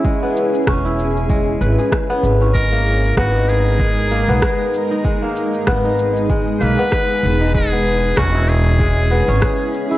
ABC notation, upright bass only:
X:1
M:4/4
L:1/16
Q:"Swing 16ths" 1/4=96
K:G#m
V:1 name="Upright bass" clef=bass
z4 E,,,6 G,,, z3 G,,,2- | G,,,4 G,,,6- G,,, B,,, z4 | z4 G,,,6 B,,, z3 E,,,2- | E,,,4 E,,,6- E,,, G,,, z4 |]